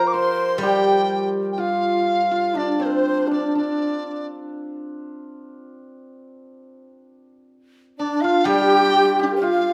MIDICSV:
0, 0, Header, 1, 5, 480
1, 0, Start_track
1, 0, Tempo, 972447
1, 299, Time_signature, 2, 2, 24, 8
1, 1259, Tempo, 995025
1, 3179, Tempo, 967742
1, 4767, End_track
2, 0, Start_track
2, 0, Title_t, "Dizi"
2, 0, Program_c, 0, 73
2, 32, Note_on_c, 0, 86, 63
2, 60, Note_on_c, 0, 84, 91
2, 67, Note_off_c, 0, 86, 0
2, 299, Note_off_c, 0, 84, 0
2, 311, Note_on_c, 0, 79, 100
2, 634, Note_off_c, 0, 79, 0
2, 748, Note_on_c, 0, 79, 61
2, 786, Note_on_c, 0, 77, 90
2, 793, Note_off_c, 0, 79, 0
2, 1268, Note_on_c, 0, 74, 78
2, 1275, Note_off_c, 0, 77, 0
2, 1388, Note_on_c, 0, 72, 68
2, 1395, Note_off_c, 0, 74, 0
2, 1622, Note_off_c, 0, 72, 0
2, 1627, Note_on_c, 0, 74, 70
2, 1735, Note_off_c, 0, 74, 0
2, 1747, Note_on_c, 0, 74, 69
2, 2087, Note_off_c, 0, 74, 0
2, 3896, Note_on_c, 0, 74, 81
2, 4008, Note_on_c, 0, 77, 98
2, 4016, Note_off_c, 0, 74, 0
2, 4127, Note_on_c, 0, 79, 117
2, 4134, Note_off_c, 0, 77, 0
2, 4510, Note_off_c, 0, 79, 0
2, 4513, Note_on_c, 0, 62, 38
2, 4530, Note_off_c, 0, 62, 0
2, 4533, Note_on_c, 0, 65, 44
2, 4545, Note_off_c, 0, 65, 0
2, 4548, Note_on_c, 0, 67, 50
2, 4558, Note_off_c, 0, 67, 0
2, 4559, Note_on_c, 0, 70, 50
2, 4581, Note_off_c, 0, 70, 0
2, 4584, Note_on_c, 0, 72, 54
2, 4598, Note_off_c, 0, 72, 0
2, 4601, Note_on_c, 0, 74, 61
2, 4614, Note_on_c, 0, 77, 97
2, 4621, Note_off_c, 0, 74, 0
2, 4767, Note_off_c, 0, 77, 0
2, 4767, End_track
3, 0, Start_track
3, 0, Title_t, "Hammered dulcimer"
3, 0, Program_c, 1, 15
3, 0, Note_on_c, 1, 65, 83
3, 0, Note_on_c, 1, 67, 74
3, 0, Note_on_c, 1, 70, 70
3, 0, Note_on_c, 1, 72, 61
3, 66, Note_off_c, 1, 72, 0
3, 68, Note_on_c, 1, 72, 67
3, 311, Note_off_c, 1, 67, 0
3, 313, Note_on_c, 1, 67, 84
3, 777, Note_off_c, 1, 65, 0
3, 779, Note_on_c, 1, 65, 72
3, 1140, Note_off_c, 1, 65, 0
3, 1142, Note_on_c, 1, 65, 66
3, 1260, Note_on_c, 1, 62, 71
3, 1347, Note_off_c, 1, 70, 0
3, 1369, Note_off_c, 1, 72, 0
3, 1378, Note_on_c, 1, 60, 67
3, 1626, Note_off_c, 1, 62, 0
3, 1628, Note_on_c, 1, 62, 55
3, 1741, Note_off_c, 1, 62, 0
3, 1743, Note_on_c, 1, 62, 58
3, 1848, Note_off_c, 1, 67, 0
3, 2770, Note_off_c, 1, 65, 0
3, 3312, Note_off_c, 1, 60, 0
3, 3552, Note_off_c, 1, 62, 0
3, 3905, Note_on_c, 1, 62, 68
3, 4027, Note_on_c, 1, 65, 85
3, 4134, Note_on_c, 1, 67, 96
3, 4170, Note_off_c, 1, 67, 0
3, 4172, Note_on_c, 1, 67, 67
3, 4209, Note_off_c, 1, 67, 0
3, 4211, Note_on_c, 1, 67, 74
3, 4240, Note_off_c, 1, 67, 0
3, 4242, Note_on_c, 1, 67, 62
3, 4275, Note_off_c, 1, 67, 0
3, 4277, Note_on_c, 1, 67, 66
3, 4317, Note_off_c, 1, 67, 0
3, 4319, Note_on_c, 1, 67, 59
3, 4348, Note_off_c, 1, 67, 0
3, 4350, Note_on_c, 1, 67, 64
3, 4382, Note_off_c, 1, 67, 0
3, 4384, Note_on_c, 1, 67, 55
3, 4426, Note_off_c, 1, 67, 0
3, 4428, Note_on_c, 1, 67, 76
3, 4498, Note_off_c, 1, 67, 0
3, 4500, Note_on_c, 1, 67, 80
3, 4609, Note_off_c, 1, 65, 0
3, 4611, Note_on_c, 1, 65, 78
3, 4767, Note_off_c, 1, 62, 0
3, 4767, Note_off_c, 1, 65, 0
3, 4767, Note_off_c, 1, 67, 0
3, 4767, End_track
4, 0, Start_track
4, 0, Title_t, "Xiao"
4, 0, Program_c, 2, 77
4, 0, Note_on_c, 2, 72, 82
4, 53, Note_off_c, 2, 72, 0
4, 56, Note_on_c, 2, 72, 87
4, 280, Note_off_c, 2, 72, 0
4, 299, Note_on_c, 2, 67, 83
4, 628, Note_off_c, 2, 67, 0
4, 778, Note_on_c, 2, 65, 67
4, 1118, Note_off_c, 2, 65, 0
4, 1140, Note_on_c, 2, 65, 66
4, 1257, Note_on_c, 2, 62, 72
4, 1264, Note_off_c, 2, 65, 0
4, 1379, Note_on_c, 2, 72, 73
4, 1387, Note_off_c, 2, 62, 0
4, 1407, Note_on_c, 2, 70, 53
4, 1414, Note_off_c, 2, 72, 0
4, 1432, Note_on_c, 2, 72, 71
4, 1440, Note_off_c, 2, 70, 0
4, 1609, Note_on_c, 2, 62, 63
4, 1616, Note_off_c, 2, 72, 0
4, 1734, Note_off_c, 2, 62, 0
4, 1739, Note_on_c, 2, 62, 52
4, 2083, Note_off_c, 2, 62, 0
4, 3900, Note_on_c, 2, 62, 73
4, 4019, Note_on_c, 2, 65, 80
4, 4026, Note_off_c, 2, 62, 0
4, 4136, Note_off_c, 2, 65, 0
4, 4139, Note_on_c, 2, 67, 106
4, 4564, Note_off_c, 2, 67, 0
4, 4585, Note_on_c, 2, 67, 55
4, 4620, Note_on_c, 2, 65, 80
4, 4627, Note_off_c, 2, 67, 0
4, 4767, Note_off_c, 2, 65, 0
4, 4767, End_track
5, 0, Start_track
5, 0, Title_t, "Guzheng"
5, 0, Program_c, 3, 107
5, 0, Note_on_c, 3, 53, 55
5, 286, Note_on_c, 3, 55, 61
5, 772, Note_off_c, 3, 53, 0
5, 1732, Note_off_c, 3, 55, 0
5, 4132, Note_on_c, 3, 55, 56
5, 4767, Note_off_c, 3, 55, 0
5, 4767, End_track
0, 0, End_of_file